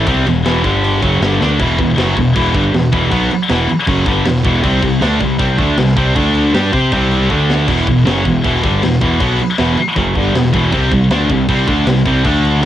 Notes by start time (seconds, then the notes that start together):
0.07 C2 C3 G3 C4, kick, ride
0.26 E1 E2 B2, ride
0.45 E1 E2 B2 E3, snare, ride
0.64 G1 G2 D3 G3, kick, ride
0.84 ride
1.02 F#1 F#2 C#3 F#3, kick, ride
1.21 G1 G2 D3 G3, snare, ride
1.40 D2 D3 A3 D4, snare
1.59 E1 E2 B2 E3, kick, crash
1.78 E1 E2 B2, kick, crash
1.97 F#1 F#2 C#3 F#3, snare, crash
2.17 E1 E2 B2, kick, crash
2.36 E1 E2 B2 E3, kick, crash
2.54 G1 G2 D3 G3, kick, crash
2.74 E1 E2 B2, snare, crash
2.92 E1 E2 B2 E3, kick, crash
3.11 B1 B2 F#3 B3, kick, crash
3.30 muted distorted electric guitar stroke, muted picked electric bass stroke, crash
3.49 E1 E2 B2 E3, snare, crash
3.68 muted distorted electric guitar stroke, muted picked electric bass stroke, crash
3.87 F#1 F#2 C#3 F#3, kick, crash
4.06 G1 G2 D3 G3, kick, crash
4.25 E1 E2 B2, snare, crash
4.36 snare
4.43 E1 E2 B2 E3, kick, crash
4.63 C2 C3 G3 C4, kick, crash
4.82 C3 G3, kick, crash
5.01 D2 D3 A3 D4, snare, crash
5.20 C2 C3 G3, kick, crash
5.39 C2 C3 G3 C4, kick, crash
5.57 D2 D3 A3 D4, kick, crash
5.77 C2 C3 G3, snare, crash
5.88 snare
5.96 C2 C3 G3 C4, kick, crash
6.15 D2 D3 A3 D4, kick, crash
6.35 crash
6.54 G2 G3 D4 G4, snare, crash
6.73 C3 C4 G4 C5, kick, crash
6.92 C2 C3 G3 C4, kick, crash
7.11 crash
7.30 D2 D3 A3 D4, kick
7.50 snare
7.68 E1 E2 B2 E3, kick, splash, crash
7.87 E1 E2 B2, kick, crash
8.05 F#1 F#2 C#3 F#3, snare, crash
8.25 E1 E2 B2, kick, crash
8.44 E1 E2 B2 E3, kick, crash
8.64 G1 G2 D3 G3, kick, crash
8.82 E1 E2 B2, snare, crash
8.93 snare
9.01 E1 E2 B2 E3, kick, crash
9.20 B1 B2 F#3 B3, kick, crash
9.39 muted distorted electric guitar stroke, muted picked electric bass stroke, crash
9.58 E1 E2 B2 E3, snare, crash
9.77 muted distorted electric guitar stroke, muted picked electric bass stroke, crash
9.96 F#1 F#2 C#3 F#3, kick, crash
10.15 G1 G2 D3 G3, kick, crash
10.35 E1 E2 B2, snare, crash
10.45 snare
10.54 E1 E2 B2 E3, kick, crash
10.72 C2 C3 G3 C4, kick, crash
10.91 C2 C3 G3, kick, crash
11.10 D2 D3 A3 D4, snare, crash
11.30 C2 C3 G3, kick, crash
11.49 C2 C3 G3 C4, kick, crash
11.68 D2 D3 A3 D4, kick, crash
11.87 C2 C3 G3, snare, crash
11.97 snare
12.06 C2 C3 G3 C4, kick, crash
12.24 D2 D3 A3 D4, kick, crash
12.45 crash
12.62 G3 D4 G4